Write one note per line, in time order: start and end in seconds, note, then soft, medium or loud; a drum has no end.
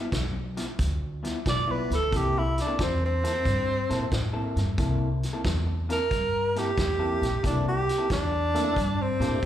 0.01 0.11 G2 medium
0.01 0.11 F3 medium
0.01 0.11 B3 medium
0.01 0.11 E4 medium
0.12 0.57 B1 medium
0.12 muted clean electric guitar stroke soft
0.12 kick medium
0.12 snare loud
0.12 closed hi-hat medium
0.33 muted clean electric guitar stroke soft
0.57 0.68 G2 medium
0.57 0.67 F3 medium
0.57 0.67 B3 medium
0.57 0.66 E4 medium
0.57 snare soft
0.57 closed hi-hat medium
0.67 muted clean electric guitar stroke soft
0.79 1.24 D2 medium
0.79 kick medium
0.79 snare soft
0.79 closed hi-hat medium
1.23 1.37 G2 medium
1.23 1.38 F3 medium
1.23 1.38 B3 medium
1.23 1.38 E4 medium
1.23 snare soft
1.23 closed hi-hat medium
1.46 1.76 B1 medium
1.46 1.73 D5 medium
1.46 kick medium
1.46 snare loud
1.46 closed hi-hat medium
1.67 1.94 G2 medium
1.67 1.94 F3 medium
1.67 1.94 B3 medium
1.67 1.93 E4 medium
1.67 1.91 B4 medium
1.90 2.05 D2 medium
1.90 snare soft
1.90 closed hi-hat medium
1.95 2.19 A4 medium
2.01 muted clean electric guitar stroke soft
2.11 2.57 C2 medium
2.11 2.41 C3 medium
2.11 2.41 A#3 medium
2.11 2.41 E4 medium
2.11 2.41 A4 loud
2.11 kick medium
2.11 snare soft
2.11 closed hi-hat medium
2.17 2.40 G4 medium
2.39 2.58 E4 medium
2.58 2.80 D4 medium
2.58 snare soft
2.58 closed hi-hat medium
2.67 2.77 C3 medium
2.67 2.77 A#3 medium
2.67 2.77 E4 medium
2.67 2.77 A4 medium
2.78 3.23 E2 medium
2.78 muted clean electric guitar stroke soft
2.78 kick medium
2.78 snare loud
2.78 closed hi-hat medium
2.83 3.02 C4 medium
3.01 muted clean electric guitar stroke medium
3.06 4.32 C4 loud
3.23 3.34 C3 medium
3.23 3.34 A#3 medium
3.23 3.34 E4 medium
3.23 3.33 A4 medium
3.23 snare soft
3.23 closed hi-hat medium
3.35 muted clean electric guitar stroke soft
3.45 3.76 G2 medium
3.45 kick medium
3.45 snare soft
3.45 closed hi-hat medium
3.89 4.05 A#2 medium
3.89 4.04 C3 medium
3.89 4.04 A#3 medium
3.89 4.04 E4 medium
3.89 4.04 A4 medium
3.89 snare soft
3.89 closed hi-hat medium
4.12 4.42 A2 medium
4.12 kick medium
4.12 snare loud
4.12 closed hi-hat medium
4.33 4.60 C3 medium
4.33 4.60 A#3 medium
4.33 4.60 E4 medium
4.33 4.59 A4 loud
4.56 4.71 G2 medium
4.56 snare soft
4.56 closed hi-hat medium
4.67 muted clean electric guitar stroke soft
4.78 5.23 C2 medium
4.78 5.07 C3 medium
4.78 5.08 A#3 medium
4.78 5.08 E4 medium
4.78 5.08 A4 medium
4.78 kick medium
4.78 snare soft
4.78 closed hi-hat medium
5.23 snare soft
5.23 closed hi-hat medium
5.33 5.43 C3 medium
5.33 5.44 A#3 medium
5.33 5.44 E4 medium
5.33 5.44 A4 medium
5.44 5.89 E2 medium
5.44 muted clean electric guitar stroke soft
5.44 kick medium
5.44 snare loud
5.44 closed hi-hat medium
5.67 muted clean electric guitar stroke soft
5.89 6.00 C3 medium
5.89 5.99 A#3 medium
5.89 5.99 E4 medium
5.89 5.99 A4 medium
5.89 6.60 A#4 loud
5.89 snare soft
5.89 closed hi-hat medium
6.00 muted clean electric guitar stroke soft
6.11 6.56 G2 medium
6.11 kick medium
6.11 snare soft
6.11 closed hi-hat medium
6.56 6.70 C3 medium
6.56 6.70 A#3 medium
6.56 6.70 E4 medium
6.56 7.43 G4 medium
6.56 6.71 A4 medium
6.56 snare soft
6.56 closed hi-hat medium
6.78 7.08 E2 medium
6.78 kick medium
6.78 snare loud
6.78 closed hi-hat medium
6.99 7.26 C3 medium
6.99 7.26 A#3 medium
6.99 7.25 E4 medium
6.99 7.25 A4 medium
7.22 7.36 A#1 medium
7.22 snare soft
7.22 closed hi-hat medium
7.33 muted clean electric guitar stroke soft
7.43 7.88 C2 medium
7.43 7.72 C3 medium
7.43 7.73 A#3 medium
7.43 7.66 D4 medium
7.43 7.73 E4 medium
7.43 7.73 A4 loud
7.43 kick medium
7.43 snare soft
7.43 closed hi-hat loud
7.68 8.10 G4 medium
7.89 snare soft
7.89 closed hi-hat medium
7.98 8.08 C3 medium
7.98 8.08 A#3 medium
7.98 8.08 E4 medium
7.98 8.09 A4 loud
8.09 8.55 E2 medium
8.09 9.04 D4 medium
8.09 muted clean electric guitar stroke soft
8.09 kick medium
8.09 snare loud
8.09 closed hi-hat medium
8.31 muted clean electric guitar stroke medium
8.54 8.65 C3 medium
8.54 8.74 A3 medium
8.54 8.64 A#3 medium
8.54 8.74 A#3 medium
8.54 8.74 D4 medium
8.54 8.64 E4 medium
8.54 8.74 E4 medium
8.54 8.63 A4 medium
8.54 snare soft
8.54 closed hi-hat medium
8.65 muted clean electric guitar stroke medium
8.76 9.07 G2 loud
8.76 kick medium
8.76 snare soft
8.76 closed hi-hat medium
9.02 9.45 C4 medium
9.20 9.35 A#2 medium
9.20 9.34 C3 medium
9.20 9.40 A3 medium
9.20 9.35 A#3 medium
9.20 9.40 A#3 medium
9.20 9.40 D4 medium
9.20 9.35 E4 medium
9.20 9.40 G4 medium
9.20 9.35 A4 medium
9.20 snare soft
9.20 closed hi-hat medium